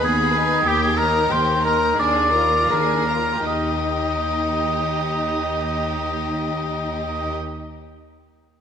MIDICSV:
0, 0, Header, 1, 6, 480
1, 0, Start_track
1, 0, Key_signature, -3, "major"
1, 0, Tempo, 640342
1, 499, Time_signature, 2, 2, 24, 8
1, 984, Tempo, 692841
1, 1944, Tempo, 778210
1, 5589, End_track
2, 0, Start_track
2, 0, Title_t, "Violin section"
2, 0, Program_c, 0, 48
2, 26, Note_on_c, 0, 83, 37
2, 262, Note_off_c, 0, 83, 0
2, 271, Note_on_c, 0, 80, 34
2, 505, Note_off_c, 0, 80, 0
2, 505, Note_on_c, 0, 79, 40
2, 726, Note_off_c, 0, 79, 0
2, 747, Note_on_c, 0, 82, 35
2, 987, Note_off_c, 0, 82, 0
2, 988, Note_on_c, 0, 79, 38
2, 1215, Note_off_c, 0, 79, 0
2, 1217, Note_on_c, 0, 82, 37
2, 1450, Note_off_c, 0, 82, 0
2, 1453, Note_on_c, 0, 80, 36
2, 1677, Note_off_c, 0, 80, 0
2, 1694, Note_on_c, 0, 82, 33
2, 1945, Note_off_c, 0, 82, 0
2, 1945, Note_on_c, 0, 80, 34
2, 2180, Note_off_c, 0, 80, 0
2, 2181, Note_on_c, 0, 82, 29
2, 2420, Note_off_c, 0, 82, 0
2, 2421, Note_on_c, 0, 75, 31
2, 4814, Note_off_c, 0, 75, 0
2, 5589, End_track
3, 0, Start_track
3, 0, Title_t, "Oboe"
3, 0, Program_c, 1, 68
3, 32, Note_on_c, 1, 68, 57
3, 503, Note_on_c, 1, 67, 54
3, 514, Note_off_c, 1, 68, 0
3, 617, Note_off_c, 1, 67, 0
3, 622, Note_on_c, 1, 68, 54
3, 735, Note_on_c, 1, 70, 52
3, 746, Note_off_c, 1, 68, 0
3, 987, Note_on_c, 1, 72, 57
3, 997, Note_off_c, 1, 70, 0
3, 1214, Note_off_c, 1, 72, 0
3, 1219, Note_on_c, 1, 70, 55
3, 1446, Note_off_c, 1, 70, 0
3, 1458, Note_on_c, 1, 74, 62
3, 1939, Note_off_c, 1, 74, 0
3, 1947, Note_on_c, 1, 70, 44
3, 2411, Note_off_c, 1, 70, 0
3, 2420, Note_on_c, 1, 75, 44
3, 4813, Note_off_c, 1, 75, 0
3, 5589, End_track
4, 0, Start_track
4, 0, Title_t, "Violin section"
4, 0, Program_c, 2, 48
4, 22, Note_on_c, 2, 68, 35
4, 258, Note_on_c, 2, 71, 37
4, 260, Note_off_c, 2, 68, 0
4, 494, Note_on_c, 2, 67, 35
4, 498, Note_off_c, 2, 71, 0
4, 720, Note_off_c, 2, 67, 0
4, 743, Note_on_c, 2, 70, 38
4, 985, Note_off_c, 2, 70, 0
4, 985, Note_on_c, 2, 67, 36
4, 1213, Note_off_c, 2, 67, 0
4, 1213, Note_on_c, 2, 70, 33
4, 1445, Note_on_c, 2, 68, 37
4, 1448, Note_off_c, 2, 70, 0
4, 1673, Note_off_c, 2, 68, 0
4, 1692, Note_on_c, 2, 70, 33
4, 1941, Note_on_c, 2, 68, 35
4, 1944, Note_off_c, 2, 70, 0
4, 2176, Note_on_c, 2, 70, 30
4, 2178, Note_off_c, 2, 68, 0
4, 2414, Note_on_c, 2, 67, 27
4, 2418, Note_off_c, 2, 70, 0
4, 4810, Note_off_c, 2, 67, 0
4, 5589, End_track
5, 0, Start_track
5, 0, Title_t, "Viola section"
5, 0, Program_c, 3, 48
5, 23, Note_on_c, 3, 59, 37
5, 260, Note_off_c, 3, 59, 0
5, 266, Note_on_c, 3, 63, 37
5, 502, Note_off_c, 3, 63, 0
5, 504, Note_on_c, 3, 58, 37
5, 726, Note_off_c, 3, 58, 0
5, 748, Note_on_c, 3, 63, 36
5, 988, Note_off_c, 3, 63, 0
5, 991, Note_on_c, 3, 58, 40
5, 1216, Note_off_c, 3, 58, 0
5, 1217, Note_on_c, 3, 63, 36
5, 1450, Note_off_c, 3, 63, 0
5, 1453, Note_on_c, 3, 62, 34
5, 1677, Note_off_c, 3, 62, 0
5, 1702, Note_on_c, 3, 65, 30
5, 1949, Note_off_c, 3, 65, 0
5, 1951, Note_on_c, 3, 62, 30
5, 2182, Note_off_c, 3, 62, 0
5, 2184, Note_on_c, 3, 65, 29
5, 2421, Note_on_c, 3, 63, 29
5, 2422, Note_off_c, 3, 65, 0
5, 4814, Note_off_c, 3, 63, 0
5, 5589, End_track
6, 0, Start_track
6, 0, Title_t, "Cello section"
6, 0, Program_c, 4, 48
6, 26, Note_on_c, 4, 39, 43
6, 444, Note_off_c, 4, 39, 0
6, 501, Note_on_c, 4, 39, 50
6, 927, Note_off_c, 4, 39, 0
6, 987, Note_on_c, 4, 39, 45
6, 1393, Note_off_c, 4, 39, 0
6, 1451, Note_on_c, 4, 39, 49
6, 1885, Note_off_c, 4, 39, 0
6, 1946, Note_on_c, 4, 39, 38
6, 2363, Note_off_c, 4, 39, 0
6, 2421, Note_on_c, 4, 39, 32
6, 4814, Note_off_c, 4, 39, 0
6, 5589, End_track
0, 0, End_of_file